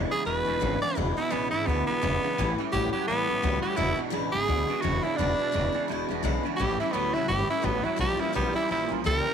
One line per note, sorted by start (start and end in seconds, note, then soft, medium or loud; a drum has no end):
0.00 0.12 E2 loud
0.00 0.12 B2 medium
0.00 0.12 E3 medium
0.00 0.12 G#3 loud
0.00 0.11 D4 medium
0.11 0.24 E2 medium
0.11 0.24 C#3 medium
0.11 0.24 E3 soft
0.11 0.26 G#3 medium
0.11 0.26 D4 medium
0.11 0.26 E4 medium
0.11 0.25 G#4 loud
0.11 muted upright bass stroke medium
0.25 0.42 E1 loud
0.25 0.44 E2 medium
0.25 0.45 B2 medium
0.25 0.46 E3 medium
0.25 0.46 G#3 medium
0.25 0.45 D4 medium
0.25 0.44 E4 medium
0.25 0.80 B4 loud
0.45 0.59 E1 medium
0.45 0.59 E2 medium
0.45 0.60 B2 medium
0.45 0.60 E3 soft
0.45 0.60 G#3 medium
0.45 0.60 D4 medium
0.45 0.60 E4 medium
0.60 0.78 G#1 loud
0.60 0.81 E2 medium
0.60 0.80 E2 medium
0.60 0.82 B2 medium
0.60 0.80 C#3 loud
0.60 0.82 E3 medium
0.60 0.82 G#3 medium
0.60 0.81 D4 medium
0.60 0.79 E4 medium
0.81 0.95 E2 medium
0.81 0.95 C#3 medium
0.81 0.95 E3 soft
0.81 0.96 G#3 soft
0.81 0.96 D4 soft
0.81 0.96 E4 medium
0.81 0.96 D5 loud
0.81 muted upright bass stroke medium
0.95 1.13 E1 loud
0.95 1.16 E2 medium
0.95 1.15 E2 medium
0.95 1.17 B2 medium
0.95 1.15 B2 medium
0.95 1.17 E3 medium
0.95 1.17 G#3 medium
0.95 1.17 D4 medium
0.95 1.15 E4 medium
1.17 1.30 E2 medium
1.17 1.30 B2 medium
1.17 1.30 E3 medium
1.17 1.30 G#3 medium
1.17 1.31 D4 medium
1.17 1.31 E4 medium
1.17 1.33 E4 loud
1.17 muted upright bass stroke medium
1.30 1.49 A1 medium
1.30 1.52 E2 medium
1.30 1.50 E2 loud
1.30 1.52 B2 medium
1.30 1.50 C#3 medium
1.30 1.52 E3 medium
1.30 1.52 G#3 medium
1.30 1.50 B3 medium
1.30 1.51 D4 medium
1.30 1.50 E4 medium
1.51 1.64 G#1 medium
1.51 1.65 E2 medium
1.51 1.65 C#3 medium
1.51 1.65 E3 soft
1.51 1.66 G#3 soft
1.51 1.67 D4 medium
1.51 1.68 E4 loud
1.51 1.66 E4 medium
1.66 1.84 D2 loud
1.66 1.85 E2 medium
1.66 1.86 B2 loud
1.66 1.87 E3 medium
1.66 1.88 G#3 medium
1.66 1.86 B3 medium
1.66 1.88 D4 medium
1.66 1.87 E4 medium
1.87 2.00 E2 medium
1.87 2.00 B2 medium
1.87 2.02 G#3 medium
1.87 2.55 B3 loud
1.87 2.02 D4 medium
1.87 2.02 E4 medium
1.87 muted upright bass stroke medium
1.91 2.01 E3 medium
2.01 2.19 E1 medium
2.01 2.22 E2 medium
2.01 2.20 E2 medium
2.01 2.23 B2 medium
2.01 2.21 C#3 loud
2.01 2.23 E3 medium
2.01 2.23 G#3 medium
2.01 2.23 D4 medium
2.01 2.22 E4 loud
2.22 2.36 E2 medium
2.22 2.36 C#3 medium
2.22 2.38 E3 soft
2.22 2.39 G#3 soft
2.22 2.38 D4 soft
2.22 2.37 E4 medium
2.22 muted upright bass stroke medium
2.37 2.54 A1 loud
2.37 2.56 A2 medium
2.37 2.58 A2 medium
2.37 2.56 E3 medium
2.37 2.59 E3 loud
2.37 2.59 G3 loud
2.37 2.59 C#4 medium
2.37 2.57 E4 loud
2.58 2.71 A2 medium
2.58 2.71 E3 medium
2.58 2.73 G3 medium
2.58 2.73 C#4 medium
2.58 2.73 E4 medium
2.58 muted upright bass stroke medium
2.72 2.89 A1 medium
2.72 2.91 A2 loud
2.72 2.93 A2 medium
2.72 2.93 E3 medium
2.72 2.91 F#3 loud
2.72 2.94 G3 medium
2.72 2.93 C#4 medium
2.72 2.92 E4 medium
2.72 2.92 G4 loud
2.93 3.06 A2 medium
2.93 3.06 F#3 medium
2.93 3.07 G3 soft
2.93 3.08 C#4 medium
2.93 3.07 E4 medium
2.93 3.07 G4 medium
2.93 muted upright bass stroke medium
3.07 3.25 A1 medium
3.07 3.26 A2 medium
3.07 3.28 E3 medium
3.07 3.26 E3 loud
3.07 3.29 G3 medium
3.07 3.61 B3 loud
3.07 3.28 C#4 medium
3.07 3.27 E4 medium
3.28 3.40 A1 medium
3.28 3.41 A2 medium
3.28 3.42 E3 medium
3.28 3.42 G3 medium
3.28 3.43 C#4 medium
3.28 3.42 E4 medium
3.42 3.60 C#2 medium
3.42 3.61 A2 medium
3.42 3.63 A2 medium
3.42 3.64 E3 medium
3.42 3.61 F#3 loud
3.42 3.64 G3 medium
3.42 3.62 C#4 medium
3.42 3.61 E4 medium
3.62 3.76 A2 medium
3.62 3.76 F#3 medium
3.62 3.77 G3 soft
3.62 3.78 C#4 medium
3.62 3.77 E4 medium
3.62 3.78 G4 medium
3.76 3.94 E1 loud
3.76 3.98 E2 medium
3.76 3.96 E2 medium
3.76 3.98 B2 medium
3.76 3.96 B2 medium
3.76 3.98 E3 medium
3.76 3.97 G#3 medium
3.76 3.96 D4 medium
3.76 3.97 E4 loud
3.76 3.94 E4 loud
3.95 4.11 E2 medium
3.95 4.12 B2 medium
3.95 4.10 E3 soft
3.95 4.11 G#3 medium
3.95 4.11 D4 medium
3.95 4.11 E4 medium
4.00 muted upright bass stroke medium
4.10 4.32 E2 medium
4.10 4.31 E2 loud
4.10 4.32 B2 medium
4.10 4.32 C#3 loud
4.10 4.33 E3 loud
4.10 4.33 G#3 loud
4.10 4.32 D4 loud
4.10 4.31 E4 loud
4.15 4.31 A1 medium
4.32 4.46 G#1 medium
4.32 4.47 E2 medium
4.32 4.47 C#3 medium
4.32 4.45 E3 soft
4.32 4.47 G#3 medium
4.32 4.47 D4 medium
4.32 4.47 E4 medium
4.32 4.83 G#4 loud
4.46 4.65 D2 medium
4.46 4.67 E2 medium
4.46 4.67 B2 loud
4.46 4.68 E3 medium
4.46 4.69 G#3 medium
4.46 4.68 D4 medium
4.46 4.67 E4 medium
4.68 4.82 E2 medium
4.68 4.82 B2 medium
4.68 4.82 E3 soft
4.68 4.82 G#3 medium
4.68 4.83 D4 soft
4.68 4.83 E4 medium
4.81 5.00 E1 medium
4.81 5.04 E2 medium
4.81 5.02 E2 medium
4.81 5.04 B2 medium
4.81 5.02 C#3 loud
4.81 5.04 E3 medium
4.81 5.04 G#3 medium
4.81 5.03 D4 medium
4.81 5.02 E4 medium
4.81 5.04 F#4 loud
5.03 5.17 E2 medium
5.03 5.17 C#3 medium
5.03 5.18 E3 soft
5.03 5.18 G#3 soft
5.03 5.19 D4 soft
5.03 5.18 E4 medium
5.03 muted upright bass stroke medium
5.16 5.35 E1 loud
5.16 5.37 E2 medium
5.16 5.39 E2 medium
5.16 5.37 B2 loud
5.16 5.40 B2 medium
5.16 5.40 E3 medium
5.16 5.39 G#3 medium
5.16 5.86 D4 loud
5.16 5.38 D4 medium
5.21 5.36 E4 medium
5.38 5.52 E2 medium
5.38 5.52 B2 medium
5.38 5.52 E3 medium
5.38 5.52 G#3 medium
5.38 5.53 D4 medium
5.38 5.53 E4 medium
5.38 muted upright bass stroke medium
5.52 5.71 E1 medium
5.52 5.74 E2 medium
5.52 5.72 E2 medium
5.52 5.74 B2 medium
5.52 5.73 C#3 loud
5.52 5.74 E3 medium
5.52 5.73 G#3 medium
5.52 5.73 D4 medium
5.52 5.71 E4 medium
5.72 5.87 E2 medium
5.72 5.88 C#3 medium
5.72 5.87 E3 medium
5.72 5.88 G#3 medium
5.72 5.89 D4 medium
5.72 5.88 E4 medium
5.72 muted upright bass stroke medium
5.88 6.06 E1 medium
5.88 6.07 E2 medium
5.88 6.08 B2 medium
5.88 6.09 E3 medium
5.88 6.10 G#3 medium
5.88 6.09 D4 medium
5.88 6.07 E4 medium
6.09 6.21 E1 medium
6.09 6.23 E2 medium
6.09 6.23 B2 medium
6.09 6.22 E3 medium
6.09 6.23 G#3 medium
6.09 6.23 D4 medium
6.09 6.24 E4 medium
6.23 6.40 B1 medium
6.23 6.44 E2 medium
6.23 6.43 E2 loud
6.23 6.44 B2 medium
6.23 6.43 C#3 loud
6.23 6.45 E3 medium
6.23 6.45 G#3 medium
6.23 6.44 D4 medium
6.23 6.42 E4 medium
6.43 6.57 E2 medium
6.43 6.58 C#3 medium
6.43 6.58 E3 medium
6.43 6.59 G#3 medium
6.43 6.59 D4 medium
6.43 6.59 E4 medium
6.43 muted upright bass stroke medium
6.56 6.76 A1 loud
6.56 6.79 A2 medium
6.56 6.78 A2 medium
6.56 6.80 E3 medium
6.56 6.78 E3 loud
6.56 6.80 G3 medium
6.56 6.78 G4 loud
6.61 6.80 C#4 medium
6.61 6.79 E4 medium
6.80 6.93 A2 medium
6.80 6.93 E3 medium
6.80 6.93 G3 medium
6.80 6.93 C#4 medium
6.80 6.94 E4 medium
6.80 muted upright bass stroke medium
6.92 7.11 D2 medium
6.92 7.14 A2 medium
6.92 7.13 A2 medium
6.92 7.15 E3 medium
6.92 7.13 F#3 loud
6.92 7.15 G3 medium
6.92 7.15 B3 loud
6.92 7.14 C#4 loud
6.92 7.12 E4 medium
7.14 7.27 C#2 loud
7.14 7.27 A2 medium
7.14 7.28 F#3 medium
7.14 7.28 G3 soft
7.14 7.29 C#4 medium
7.14 7.29 E4 medium
7.14 7.28 E4 loud
7.28 7.46 G1 loud
7.28 7.48 A2 medium
7.28 7.50 E3 medium
7.28 7.48 E3 loud
7.28 7.50 G3 medium
7.28 7.50 C#4 medium
7.28 7.48 E4 medium
7.28 7.49 G4 loud
7.49 7.63 A2 medium
7.49 7.63 E3 medium
7.49 7.62 G3 soft
7.49 7.63 C#4 medium
7.49 7.63 E4 medium
7.49 7.66 E4 medium
7.49 muted upright bass stroke medium
7.62 7.81 A1 loud
7.62 7.84 A2 medium
7.62 7.83 A2 medium
7.62 7.84 E3 medium
7.62 7.83 F#3 loud
7.62 7.85 G3 medium
7.62 7.86 B3 medium
7.62 7.84 C#4 medium
7.62 7.82 E4 medium
7.83 7.98 A2 medium
7.83 7.98 F#3 medium
7.83 7.97 G3 soft
7.83 7.97 C#4 medium
7.83 7.97 E4 medium
7.83 7.99 E4 medium
7.83 muted upright bass stroke medium
7.96 8.16 A#1 medium
7.96 8.19 A#2 medium
7.96 8.18 A#2 medium
7.96 8.19 E3 medium
7.96 8.19 F3 loud
7.96 8.19 G3 medium
7.96 8.18 C#4 medium
7.96 8.16 E4 medium
7.96 8.21 G4 loud
8.17 8.33 A#2 medium
8.17 8.34 F3 medium
8.17 8.33 G3 soft
8.17 8.33 C#4 medium
8.17 8.33 E4 medium
8.17 8.34 E4 loud
8.17 muted upright bass stroke medium
8.33 8.52 A#1 medium
8.33 8.55 A#2 medium
8.33 8.54 A#2 medium
8.33 8.55 E3 medium
8.33 8.55 G3 medium
8.33 8.54 G3 loud
8.33 8.55 B3 medium
8.33 8.53 C#4 medium
8.33 8.52 E4 loud
8.53 8.69 A#2 medium
8.53 8.68 G3 soft
8.53 8.69 G3 medium
8.53 8.69 C#4 soft
8.53 8.69 E4 medium
8.53 8.70 E4 medium
8.53 muted upright bass stroke medium
8.68 8.87 A#1 medium
8.68 8.89 A#2 medium
8.68 8.90 E3 medium
8.68 8.89 F3 medium
8.68 8.90 G3 medium
8.68 8.89 C#4 medium
8.68 8.87 E4 medium
8.68 8.91 E4 medium
8.88 9.02 A#1 medium
8.88 9.04 A#2 medium
8.88 9.04 F3 medium
8.88 9.04 G3 medium
8.88 9.05 C#4 medium
8.88 9.04 E4 medium
9.04 9.22 C#2 loud
9.04 9.25 A#2 medium
9.04 9.24 A#2 medium
9.04 9.26 E3 medium
9.04 9.26 G3 medium
9.04 9.24 G3 loud
9.04 9.25 C#4 medium
9.04 9.24 E4 loud
9.04 9.34 A#4 loud
9.25 9.34 A#2 medium
9.25 9.34 G3 medium
9.25 9.34 G3 soft
9.25 9.34 C#4 medium
9.25 9.34 E4 medium